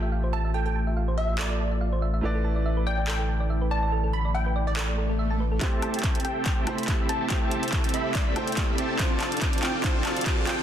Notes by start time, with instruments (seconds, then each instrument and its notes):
Already playing: sub bass A1, grand piano A3 F4 G4 E5, analog synth pad A3 F4
0.02 synth arpeggio sound E5
0.12 synth arpeggio sound F5
0.24 synth arpeggio sound C5
0.33 synth arpeggio sound E5, synth pluck A5
0.45 synth arpeggio sound E5
0.54 synth arpeggio sound A4, synth pluck G5
0.66 synth arpeggio sound A4, synth pluck G5
0.75 synth arpeggio sound A5
0.87 synth arpeggio sound E5
0.97 synth arpeggio sound F5
1.08 synth arpeggio sound C5
1.18 synth pluck E5, synth arpeggio sound E5
1.29 synth arpeggio sound E5
1.39 synth arpeggio sound A4, synth pluck D5, clap
1.50 synth arpeggio sound A4
1.60 synth arpeggio sound A5
1.71 synth arpeggio sound E5
1.81 synth arpeggio sound F5
1.93 synth arpeggio sound C5
2.02 synth arpeggio sound E5
2.14 synth arpeggio sound E5
2.21 sub bass A1, analog synth pad D3 E4, grand piano A3 E4 B4, synth arpeggio sound A4
2.25 grand piano D5
2.35 synth arpeggio sound A4
2.44 synth arpeggio sound A5
2.56 synth arpeggio sound D5
2.66 synth arpeggio sound E5
2.77 synth arpeggio sound B4
2.87 synth arpeggio sound D5, synth pluck G5
2.98 synth arpeggio sound D5
3.08 synth arpeggio sound A4, synth pluck G5, clap
3.19 synth arpeggio sound A4
3.29 synth arpeggio sound A5
3.40 synth arpeggio sound D5
3.50 synth arpeggio sound E5
3.61 synth arpeggio sound B4
3.71 synth arpeggio sound D5, synth pluck A5
3.83 synth arpeggio sound D5
3.92 synth arpeggio sound A4
4.04 synth arpeggio sound A4
4.13 synth arpeggio sound A5, synth pluck B5
4.25 synth arpeggio sound D5
4.34 synth arpeggio sound E5, synth pluck G5
4.46 synth arpeggio sound B4
4.56 synth arpeggio sound D5
4.67 synth pluck D5, synth arpeggio sound D5
4.77 synth arpeggio sound A4, clap, swell
4.88 synth arpeggio sound A4
4.98 synth arpeggio sound A4
5.09 synth arpeggio sound A4
5.19 synth arpeggio sound E5
5.30 synth arpeggio sound A5
5.40 synth arpeggio sound B4
5.52 synth arpeggio sound A4
5.59 sub bass A1, analog synth pad C3 A3 G4, grand piano A3 E4 G4, supersaw synth C4 G4 A4 E5 A5, kick, clap, closed hi-hat, riser
5.63 grand piano C5
5.82 closed hi-hat, high woodblock
5.94 closed hi-hat
5.99 closed hi-hat
6.04 kick, clap, closed hi-hat
6.15 closed hi-hat
6.20 closed hi-hat
6.25 sub bass A1, supersaw synth C4 G4 A4 E5 G5, synth pluck G5, closed hi-hat
6.46 synth pluck G5, kick, clap, closed hi-hat
6.65 grand piano A3 E4 G4, supersaw synth C4 G4 A4 E5 B5, closed hi-hat, high woodblock
6.69 grand piano C5
6.78 closed hi-hat
6.83 closed hi-hat
6.88 kick, clap, closed hi-hat
7.09 supersaw synth C4 G4 A4 E5 A5, synth pluck A5, closed hi-hat
7.21 supersaw synth C4 G4 A4 E5 A5
7.28 grand piano A3 E4 G4, supersaw synth C4 G4 A4 E5 A5, synth pluck G5, kick, clap, closed hi-hat
7.32 grand piano C5
7.42 synth pluck G5
7.51 closed hi-hat
7.63 closed hi-hat
7.68 closed hi-hat
7.73 kick, clap, closed hi-hat
7.84 closed hi-hat
7.89 closed hi-hat
7.94 supersaw synth C4 G4 A4 E5 B5, synth pluck E5, closed hi-hat
8.15 supersaw synth C4 G4 A4 E5 B5, synth pluck D5, kick, clap, closed hi-hat
8.34 grand piano A3 E4 G4 C5, supersaw synth C4 G4 A4 E5 G5, closed hi-hat, high woodblock
8.47 closed hi-hat
8.52 closed hi-hat
8.57 supersaw synth C4 G4 A4 E5 B5, kick, clap, closed hi-hat
8.78 sub bass A2, supersaw synth C4 G4 A4 E5 A5, closed hi-hat
8.97 analog synth pad D3 C4 F4, supersaw synth C4 F4 A4 D5 A5, grand piano D4 F4 C5, kick, clap, closed hi-hat
9.21 clap, closed hi-hat, high woodblock
9.32 closed hi-hat
9.37 closed hi-hat
9.42 kick, clap, closed hi-hat
9.53 closed hi-hat
9.58 closed hi-hat
9.63 supersaw synth C4 F4 A4 D5 G5, synth pluck G5, clap, closed hi-hat
9.82 supersaw synth C4 F4 A4 D5 A5, grand piano D4 F4, kick, clap, closed hi-hat
9.86 grand piano C5
10.05 clap, closed hi-hat, high woodblock
10.16 closed hi-hat
10.21 closed hi-hat
10.26 kick, clap, closed hi-hat
10.47 supersaw synth C4 F4 A4 D5 G5, synth pluck G5, clap, closed hi-hat